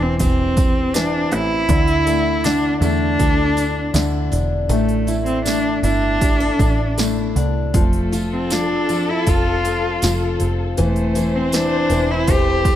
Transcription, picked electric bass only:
Already playing: E1
0.20 E1
1.32 A1
1.69 D2
2.81 E2
3.19 D2
3.94 D2
4.32 E1
4.69 A1
5.83 G1
6.59 A1
7.36 C2
7.74 F1
8.89 G1
9.27 F1
10.03 F1
10.41 F1
10.78 E1
11.90 E1
12.28 E1

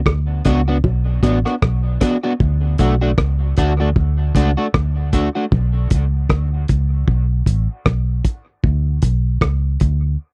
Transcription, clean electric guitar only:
0.45 B3 D4 F#4
0.68 B3 D4 F#4
1.23 B3 D4 F#4
1.45 B3 D4 F#4
2.01 B3 D4 F#4
2.23 B3 D4 F#4
2.79 A3 D4 F#4
3.01 A3 D4 F#4
3.58 A3 D4 F#4
3.80 A3 D4 F#4
4.36 A3 D4 F#4
4.57 A3 D4 F#4
5.13 A3 D4 F#4
5.35 A3 D4 F#4

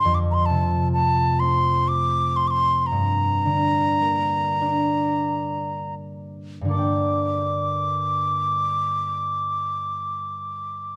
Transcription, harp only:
Already playing: D4 G4
0.05 F2
0.50 C3
0.95 A3
1.42 C4
2.92 G2
3.45 D3
4.01 A#3
4.61 D4
6.61 G2 D3
6.68 A#3 A4
6.74 D5 G5

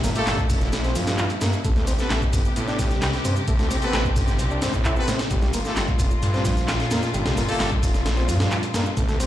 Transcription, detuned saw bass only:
0.04 G1
0.16 G1
0.27 G1
0.50 F1
0.72 A#1
0.95 G2
1.42 G2
1.65 A1
1.76 D2
1.87 A1
2.10 A1
2.33 G1
2.57 A2
2.91 C2
3.02 C2
3.25 G2
3.48 A1
3.60 D2
3.71 A1
3.83 A1
3.94 A1
4.16 G1
4.40 C2
4.62 A2
5.08 A2
5.31 G1
5.42 C2
5.53 G1
5.77 G1
6.00 F1
6.23 G2
6.57 A#1
6.69 A#1
6.91 F2
7.14 G1
7.26 C2
7.37 G1
7.49 G1
7.60 G1
7.83 F1
8.06 A#1
8.29 G2
8.74 G2
8.97 A1
9.09 D2
9.20 A1

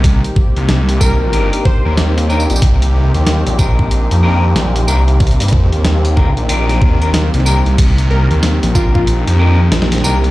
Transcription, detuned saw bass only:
Already playing: C2
0.57 C2
1.86 D#2
2.50 A#1
2.62 C2
3.15 D#2
3.47 A#1
4.11 F2
4.56 A#1
4.88 C2
5.40 G2
5.53 F2
5.73 D#2
6.16 D2
6.37 A#1
6.82 D#2
7.34 C2
7.66 C2
7.78 C2
8.31 D#2
8.63 A#1
9.27 F2
9.72 A#1
10.04 C2

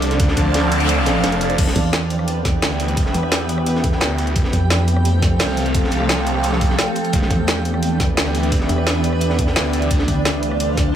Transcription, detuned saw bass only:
Already playing: C2
0.20 D2
0.37 D2
1.24 F1
1.58 E1
2.62 D2
2.97 E1
4.01 D2
4.36 F1
5.40 C2
5.75 F1
5.92 C2
7.13 E1
8.17 D2
8.52 E1
9.56 D2
9.91 D2

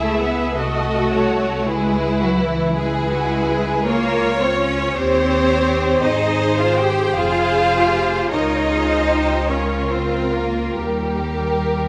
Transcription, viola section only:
Already playing: G#4 E5
0.57 F#4 D#5
1.13 C#5
1.69 E4 B4
2.77 E4 B4
3.87 F4 C#5
4.96 G4 C#5
6.04 G#4 C5
7.15 G#4 C5
7.73 G4
8.30 F4 C#5
8.90 C5
9.49 F4 A#4
10.78 A#4

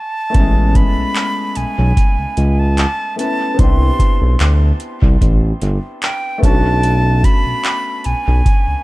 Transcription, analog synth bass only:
0.35 A1
0.98 B1
1.57 B1
1.78 B1
2.19 C#2
2.38 C#2
3.59 C2
4.22 B1
4.41 D2
5.02 C2
5.22 A1
5.62 G1
6.43 B1
7.46 B1
8.06 B1
8.28 B1
8.68 C#2

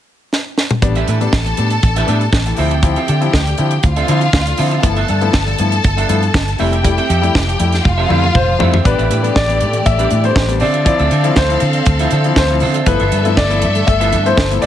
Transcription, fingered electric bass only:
0.83 A1
1.08 A2
1.33 A1
1.58 A2
1.83 A1
2.08 A2
2.33 A1
2.58 D2
3.09 D3
3.34 D2
3.59 D3
3.84 D2
4.09 D3
4.33 D2
4.59 D3
4.84 G1
5.10 G2
5.34 G1
5.59 G2
5.85 G1
6.09 G2
6.35 G1
6.60 F1
7.10 F2
7.35 F1
7.60 F2
7.86 F1
8.10 F2
8.35 F1
8.61 F2
8.86 A1
8.99 A1
9.11 A2
9.36 A1
9.61 A2
9.86 A1
10.11 A2
10.36 A1
10.62 D3
11.00 D2
11.12 D3
11.37 D2
11.62 D3
11.87 D2
12.12 D3
12.37 D2
12.62 D3
12.87 G1
13.01 G1
13.12 G2
13.37 G1
13.63 G2
13.88 G1
14.13 G2
14.38 G1
14.63 F1

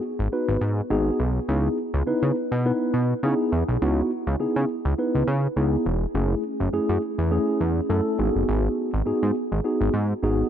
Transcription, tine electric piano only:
0.32 B3 D#4 F#4 B4
0.90 B3 D#4 F#4 G#4
1.49 B3 D#4 E4 G#4
2.07 B3 D#4 E4 B4
2.65 B3 D#4 E4 B4
3.23 B3 D#4 E4 G#4
3.82 B3 D#4 E4 F#4
4.40 B3 D#4 E4 G#4
4.98 B3 D#4 E4 B4
5.57 B3 D#4 E4 G#4
6.15 A3 C#4 E4 G#4
6.73 A3 C#4 E4 G#4
7.31 A3 C#4 E4 G#4
7.89 A3 C#4 E4 A4
8.18 B3 D#4 F#4 G#4
9.06 B3 D#4 F#4 G#4
9.64 B3 D#4 F#4 G#4
10.23 B3 D#4 F#4 G#4

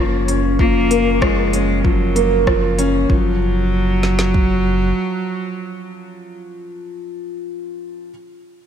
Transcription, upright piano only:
Already playing: F3 A#3 C#4
0.28 C#4
0.60 F3
0.91 A#3
1.22 F3
1.53 C#4
1.84 F3
2.16 A#3
2.47 F3
2.78 C#4
3.10 F3

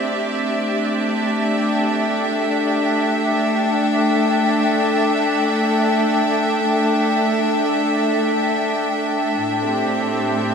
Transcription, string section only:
Already playing: A3 C4 G4 D5 E5
0.00 D4
1.01 A4
1.53 G5
9.39 A2
9.62 C4 G4

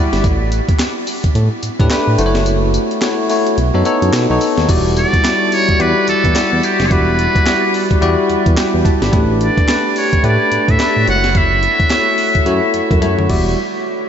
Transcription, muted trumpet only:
4.98 D5
5.54 C#5
5.81 B4
6.09 A4
6.64 G4
6.87 C#5
6.92 B4
9.43 D5
9.98 C#5
10.26 D5
10.70 E5
11.09 F#5
11.37 E5

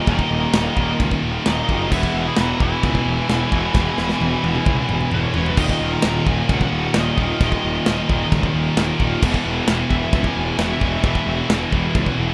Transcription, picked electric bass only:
0.07 D#1
0.31 D#1
0.53 D#1
0.77 D#1
1.00 C#2
1.23 D#1
1.47 D#1
1.69 F#1
1.92 E1
2.14 E1
2.38 E1
2.60 E1
2.84 C#2
3.06 E1
3.29 E1
3.52 E1
3.75 E1
3.98 E1
4.21 E1
4.44 E1
4.67 C#2
4.89 E1
5.12 E1
5.36 E1
5.58 D#1
5.81 D#1
6.05 D#1
6.27 D#1
6.50 C#2
6.73 D#1
6.96 D#1
7.18 D#1
7.40 D#1
7.65 D#1
7.87 D#1
8.10 D#1
8.33 C#2
8.54 D#1
8.77 D#1
9.00 D#1
9.23 E1
9.46 E1
9.68 E1
9.91 E1
10.13 C#2
10.37 E1
10.59 E1
10.82 E1
11.04 E1
11.27 E1
11.50 E1
11.73 E1
11.95 C#2
12.18 E1

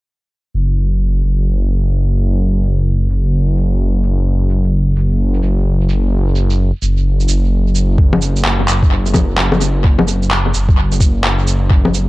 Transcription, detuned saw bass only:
0.54 F#1
1.24 F#1
3.10 F#1
4.96 F#1
5.43 F#1
6.82 F#1
7.28 F#1
7.98 F#1
8.68 F#1
10.54 F#1

